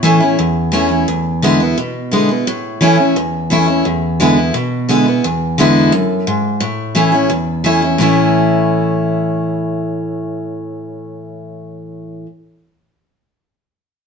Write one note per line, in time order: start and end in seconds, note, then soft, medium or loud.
0.00 0.34 A2 medium
0.00 0.20 E3 loud
0.00 0.20 A3 loud
0.05 0.21 C#4 medium
0.05 0.19 E4 loud
0.20 0.38 C#4 medium
0.20 0.37 E4 medium
0.39 1.04 E2 medium
0.72 0.89 E3 medium
0.72 0.89 A3 medium
0.72 0.90 C#4 loud
0.72 0.88 E4 medium
0.89 1.07 C#4 soft
0.89 1.06 E4 medium
1.08 1.73 E2 medium
1.42 1.59 D3 medium
1.42 1.59 G#3 medium
1.42 1.60 B3 loud
1.42 1.59 E4 loud
1.60 1.78 B3 soft
1.60 1.76 E4 medium
1.78 2.43 B2 medium
2.11 2.28 D3 medium
2.11 2.29 G#3 medium
2.11 2.29 B3 medium
2.11 2.28 E4 medium
2.29 2.47 B3 soft
2.29 2.45 E4 medium
2.47 3.12 A2 loud
2.81 2.97 E3 medium
2.81 2.98 A3 medium
2.81 2.98 C#4 loud
2.81 2.96 E4 loud
2.97 3.16 C#4 soft
2.97 3.14 E4 medium
3.16 3.82 E2 medium
3.50 3.67 E3 medium
3.50 3.67 A3 medium
3.50 3.68 C#4 loud
3.50 3.67 E4 loud
3.68 3.85 C#4 soft
3.68 3.84 E4 medium
3.85 4.51 E2 medium
4.20 4.36 D3 loud
4.20 4.36 G#3 loud
4.20 4.37 B3 medium
4.20 4.35 E4 loud
4.36 4.54 B3 soft
4.36 4.53 E4 medium
4.54 5.20 B2 medium
4.89 5.05 D3 medium
4.89 5.06 G#3 medium
4.89 5.06 B3 loud
4.89 5.05 E4 loud
5.06 5.24 B3 soft
5.06 5.23 E4 medium
5.24 5.90 E2 loud
5.58 5.91 D3 loud
5.58 5.91 G#3 medium
5.58 5.92 B3 loud
5.58 5.92 E4 loud
5.92 6.25 F#2 medium
6.27 6.60 G#2 medium
6.60 7.27 A2 loud
6.95 7.12 E3 medium
6.95 7.12 A3 loud
6.95 7.13 C#4 loud
6.95 7.11 E4 loud
7.12 7.30 C#4 medium
7.12 7.29 E4 medium
7.30 7.96 E2 medium
7.64 7.81 E3 medium
7.64 7.82 A3 medium
7.64 7.82 C#4 medium
7.64 7.81 E4 medium
7.82 8.00 C#4 soft
7.82 7.99 E4 medium
7.98 12.25 A2 medium
7.98 12.26 E3 medium
7.98 12.26 A3 medium
7.98 12.27 C#4 loud
7.98 12.27 E4 loud